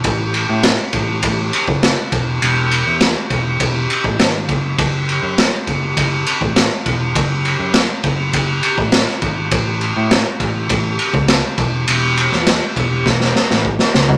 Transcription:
<<
  \new Staff \with { instrumentName = "Picked electric bass" } { \clef bass \time 4/4 \key a \major \tempo 4 = 102 a,,8. a,8 r16 a,,8 a,,8 r16 fis,,8 r16 e,,8 | e,,8. e,8 r16 e,,8 e,,8 r16 a,,16 gis,,8 fis,,8 | fis,,8. fis,8 r16 fis,,8 fis,,8 r16 a,,8 r16 e,,8 | fis,,8. fis,8 r16 fis,,8 fis,,8 r16 a,,8 r16 gis,,8 |
a,,8. a,8 r16 a,,8 a,,8 r16 cis,8 r16 e,,8 | e,,8. e,8 r16 e,,8 e,,8 r16 a,,8 r16 cis,8 | }
  \new DrumStaff \with { instrumentName = "Drums" } \drummode { \time 4/4 <bd cymr>8 cymr8 <cymr sn>8 <bd cymr>8 <bd cymr>8 cymr16 bd16 <cymr sn>8 <bd cymr>8 | cymr8 cymr8 <cymr sn>8 <bd cymr>8 <bd cymr>8 cymr16 bd16 <cymr sn>8 <bd cymr>8 | <bd cymr>8 cymr8 <cymr sn>8 <bd cymr>8 <bd cymr>8 cymr16 bd16 <cymr sn>8 <bd cymr>8 | <bd cymr>8 cymr8 <cymr sn>8 <bd cymr>8 <bd cymr>8 cymr16 bd16 <cymr sn>16 sn16 <bd cymr>8 |
<bd cymr>8 cymr8 <cymr sn>8 <bd cymr>8 <bd cymr>8 cymr16 bd16 <cymr sn>8 <bd cymr>8 | cymr8 cymr16 sn16 <cymr sn>8 <bd cymr>8 <bd sn>16 sn16 sn16 sn16 bd16 sn16 sn16 tomfh16 | }
>>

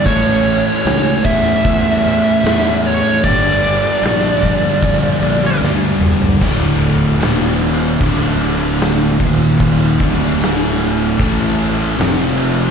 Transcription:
<<
  \new Staff \with { instrumentName = "Lead electric guitar" } { \time 4/4 \key d \minor \tempo 4 = 76 cis''4. e''2 cis''8 | d''2. r4 | r1 | r1 | }
  \new Staff \with { instrumentName = "Distorted electric guitar" } { \clef bass \time 4/4 \key d \minor <a, e a cis' e' a'>4. <a, e a cis' e' a'>4. <a, e a cis' e' a'>4 | <g, d g bes d' g'>4. <g, d g bes d' g'>4. <g, d g bes d' g'>4 | <d, a, d>4 <ees, bes, ees>4 <d, a, d>4. <ees, bes, ees>8~ | <ees, bes, ees>8 <d, a, d>4. <a, e a>4 <f, c f>4 | }
  \new Staff \with { instrumentName = "Distorted electric guitar" } { \clef bass \time 4/4 \key d \minor <a, e a>2~ <a, e a>8 <a, e a>8 <a, e a>4 | <g, d g>2~ <g, d g>8 <g, d g>8 <g, d g>4 | <d, a, d>4 <ees, bes, ees>4 <d, a, d>4. <ees, bes, ees>8~ | <ees, bes, ees>8 <d, a, d>4. <a, e a>4 <f, c f>4 | }
  \new Staff \with { instrumentName = "Distorted electric guitar" } { \clef bass \time 4/4 \key d \minor <a, e a>1 | <g, d g>1 | <d, a, d>4 <ees, bes, ees>4 <d, a, d>4. <ees, bes, ees>8~ | <ees, bes, ees>8 <d, a, d>4. <a, e a>4 <f, c f>4 | }
  \new Staff \with { instrumentName = "Fingered electric bass" } { \clef bass \time 4/4 \key d \minor a,,4 cis,8 e,8 e,4 e,4 | g,,4 bes,,4 bes,,8 bes,,8 d,8 e,,8 | d,,4 ees,,4 d,,4. ees,,8~ | ees,,8 d,,4. a,,4 f,,4 | }
  \new DrumStaff \with { instrumentName = "Drums" } \drummode { \time 4/4 <cymc bd>8 cymc8 <cymc sn>8 <cymc bd>8 <cymc bd>8 cymc8 <cymc sn>8 cymc8 | <cymc bd>8 cymc8 <cymc sn>8 <cymc bd>8 <cymc bd>8 cymc8 sn8 toml16 tomfh16 | <cymc bd>8 cymc8 <cymc sn>8 cymc8 <cymc bd>8 <cymc sn>8 <cymc sn>8 <cymc bd>8 | <cymc bd>8 <cymc bd>16 sn16 <cymc sn>8 cymc8 <cymc bd>8 cymc8 <cymc sn>8 cymc8 | }
>>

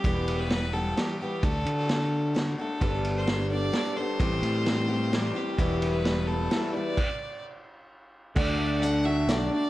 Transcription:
<<
  \new Staff \with { instrumentName = "Fiddle" } { \time 3/4 \key d \mixolydian \tempo 4 = 130 g'8. b'8. a'8 g'8 g'8 | a'2 r8 a'8~ | a'8. c''8. d''4 c''8~ | c''2~ c''8 g'8~ |
g'8. b'8. a'4 d''8~ | d''4 r2 | d''4 fis''8 e''8 d''8 d''8 | }
  \new Staff \with { instrumentName = "Upright piano" } { \time 3/4 \key d \mixolydian r2. | r2. | r2. | r2. |
r2. | r2. | <fis' a' d''>8 r8 <fis' a' d''>8 r8 <fis' a' d''>8 r8 | }
  \new Staff \with { instrumentName = "Steel-string acoustic guitar" } { \time 3/4 \key d \mixolydian <e, b, e g b g'>4 <e g b g'>8 <e g b g'>8 <e g b g'>8 <e g b g'>8 | <d a d' fis'>4 <d a d' fis'>4 <d a d' fis'>8 <a d' fis'>8 | <g b d' a'>4 <g b d' a'>8 <b d' a'>8 <g b d' a'>8 <b d' a'>8 | <a, e g c' g'>4 <e g c' g'>8 <g c' g'>8 <e g c' g'>8 <g c' g'>8 |
<e, b, e g b e'>4 <e g b e'>4 <e g b e'>8 <e g b e'>8 | r2. | <d a d' fis'>4 <d a d' fis'>8 <a d' fis'>8 <d a d' fis'>8 <a d' fis'>8 | }
  \new Staff \with { instrumentName = "Clean electric guitar" } { \clef bass \time 3/4 \key d \mixolydian r2. | r2. | <g b d' a'>2 <g b d' a'>4 | <a, e g c' g'>2 <a, e g c' g'>4 |
<e, b, e g b e'>2 <e, b, e g b e'>4 | r2. | d8 a8 d'8 fis'8 d'8 d8 | }
  \new Staff \with { instrumentName = "Fingered electric bass" } { \clef bass \time 3/4 \key d \mixolydian e,,2 r4 | d,8 d2 r8 | g,,2 r4 | a,,8 a,2 r8 |
e,,2 r4 | r2. | d,2 b,,8 r8 | }
  \new DrumStaff \with { instrumentName = "Drums" } \drummode { \time 3/4 <bd cymr>8 cymr8 <cymr sn>4 <cymr sn>4 | <bd cymr>8 cymr8 <cymr sn>4 <cymr sn>4 | <bd cymr>8 cymr8 <cymr sn>4 <cymr sn>4 | <bd cymr>8 cymr8 <cymr sn>4 <cymr sn>4 |
<bd cymr>8 cymr8 <cymr sn>4 <cymr sn>4 | <cymc bd>4 r4 r4 | <cymc bd>4 hh4 <hh sn>4 | }
>>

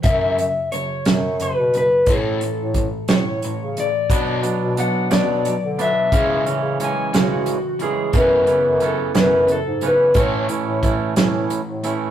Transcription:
<<
  \new Staff \with { instrumentName = "Clean electric guitar" } { \time 6/8 \key fis \minor \tempo 4. = 59 e''4 cis''4 b'8 b'8 | a'4. cis''4 d''8~ | d''4 fis''8 d''4 e''8~ | e''4 gis''8 fis'4 gis'8 |
b'4 a'8 b'8 a'8 b'8 | cis''2~ cis''8 r8 | }
  \new Staff \with { instrumentName = "Clean electric guitar" } { \clef bass \time 6/8 \key fis \minor r2. | r2. | <b, fis b d'>8 <b, fis b d'>8 <b, fis b d'>8 <b, fis b d'>8 r8 <b, fis b d'>8 | <cis e gis cis'>8 <cis e gis cis'>8 <cis e gis cis'>8 <cis e gis cis'>8 r8 <cis e gis cis'>8 |
<cis e b cis'>8 <cis e b cis'>8 <cis e b cis'>8 <cis e b cis'>8 r8 <cis e b cis'>8 | <e a cis' e'>8 <e a cis' e'>8 <e a cis' e'>8 <e a cis' e'>8 r8 <e a cis' e'>8 | }
  \new Staff \with { instrumentName = "Overdriven electric guitar" } { \clef bass \time 6/8 \key fis \minor <fis, cis e>8 <fis, cis>8 <fis, cis>8 <fis, cis>8 <fis, cis>8 <fis, cis>8 | <a, e a>8 <a, e>8 <a, e>8 <a, e>8 <a, e>8 <a, e>8 | <b, fis b>8 <b, fis>8 <b, fis>8 <b, fis>8 <b, fis>8 <b, fis>8 | <cis e gis>8 <cis e>8 <cis e>8 <cis e>8 <cis e>8 <cis e>8 |
<fis, cis e>8 <fis, cis>8 <fis, cis>8 <fis, cis>8 <fis, cis>8 <fis, cis>8 | <a, e a>8 <a, e>8 <a, e>8 <a, e>8 <a, e>8 <a, e>8 | }
  \new Staff \with { instrumentName = "Bass clarinet" } { \clef bass \time 6/8 \key fis \minor fis,8. r8. fis,8. b,8 r16 | a,8. a,8 r16 a,8. cis8 r16 | b,8. b,8 r16 b,8. d8 r16 | cis8. cis8 r16 cis8. r8. |
fis,8. fis,8 r16 fis,8. gis,8 r16 | a,8. a,8 r16 a,8. a,8 r16 | }
  \new DrumStaff \with { instrumentName = "Drums" } \drummode { \time 6/8 <hh bd>8 hh8 hh8 <hh sn>8 hh8 hh8 | <hh bd>8 hh8 <hh bd>8 <hh sn>8 hh8 hh8 | <hh bd>8 hh8 hh8 <hh sn>8 hh8 hh8 | <hh bd>8 hh8 hh8 <hh sn>8 hh8 hh8 |
<hh bd>8 hh8 hh8 <hh sn>8 hh8 hh8 | <hh bd>8 hh8 <hh bd>8 <hh sn>8 hh8 hh8 | }
>>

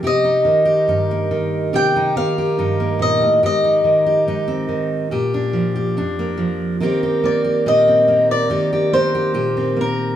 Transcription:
<<
  \new Staff \with { instrumentName = "Steel-string acoustic guitar" } { \time 4/4 \key c \dorian \tempo 4 = 71 ees''2 g''8 f''4 ees''8 | ees''4 r2. | r8 d''8 ees''8. d''8. c''4 bes'8 | }
  \new Staff \with { instrumentName = "Steel-string acoustic guitar" } { \time 4/4 \key c \dorian << { g'16 ees'8 g'16 ees'16 bes8. g'16 ees'8 g'16 ees'16 bes8. | g'16 ees'8 g'16 ees'16 c'8. g'16 d'8 g'16 d'16 bes8. | <bes c' g'>16 g'8 g'16 g'16 c'8. g'16 g'8 g'16 g'16 c'8. | } \\ { c8 ees8 g,8 ees8 c8 ees8 g,8 bes,16 a,16 | aes,8 ees8 aes,8 ees8 bes,8 f8 f,8 f8 | ees8 bes8 bes,8 bes8 ees8 bes8 bes,8 bes8 | } >> }
>>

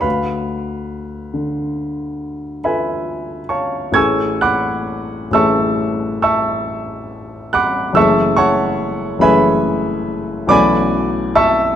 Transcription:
<<
  \new Staff \with { instrumentName = "Grand piano" } { \time 9/8 \key a \major \tempo 4. = 46 <b' f'' b''>2. <b' e'' gis'' b''>4 <cis'' f'' a'' cis'''>8 | <gis'' cis''' e''' gis'''>8 <fis'' b'' d''' fis'''>4 <e'' a'' cis''' e'''>4 <e'' a'' cis''' e'''>4. <fis'' b'' d''' fis'''>8 | <e'' a'' cis''' e'''>8 <cis'' fis'' a'' cis'''>4 <b' e'' gis'' b''>4. <d'' gis'' b'' d'''>4 <e'' a'' cis''' e'''>8 | }
  \new Staff \with { instrumentName = "Grand piano" } { \time 9/8 \key a \major d,4. d4. <f' a'>4. | <a,, e a cis' gis'>4. <a,, e a cis' gis'>2. | <fis,, e a cis' gis'>4. <fis,, e a cis' gis'>4. <b,, e a cis' fis'>4. | }
>>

